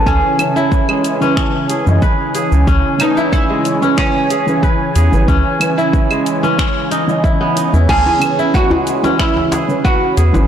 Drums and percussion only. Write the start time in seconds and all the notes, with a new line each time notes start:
0.06 kick, cabasa
0.39 closed hi-hat, cabasa, claves
0.56 cabasa
0.72 kick, cabasa
0.89 claves
1.04 closed hi-hat, cabasa
1.22 cabasa
1.37 finger snap, kick, cabasa
1.70 closed hi-hat, cabasa
1.87 cabasa
2.02 kick, cabasa
2.35 closed hi-hat, cabasa
2.52 cabasa
2.67 kick, cabasa
3.00 closed hi-hat, cabasa, claves
3.17 cabasa
3.33 kick, cabasa
3.65 closed hi-hat, cabasa
3.82 cabasa
3.98 finger snap, kick, cabasa
4.30 closed hi-hat, cabasa
4.48 cabasa
4.63 kick, cabasa
4.96 closed hi-hat, cabasa
5.13 cabasa
5.28 kick, cabasa
5.61 closed hi-hat, cabasa, claves
5.78 cabasa
5.93 kick, cabasa
6.11 cabasa, claves
6.26 closed hi-hat, cabasa
6.44 cabasa
6.59 finger snap, kick, cabasa
6.92 closed hi-hat, cabasa
7.09 cabasa
7.24 kick, cabasa
7.57 closed hi-hat, cabasa
7.74 cabasa
7.89 kick, crash, djembe slap, cabasa
8.06 djembe tone
8.22 closed hi-hat, cabasa, claves
8.39 cabasa
8.54 kick, cabasa
8.71 djembe tone, djembe bass
8.87 closed hi-hat, cabasa
9.04 djembe slap, cabasa
9.19 finger snap, kick, cabasa
9.37 djembe tone
9.52 closed hi-hat, djembe slap, cabasa
9.69 cabasa
9.85 kick, cabasa
10.17 closed hi-hat, cabasa
10.34 djembe tone, cabasa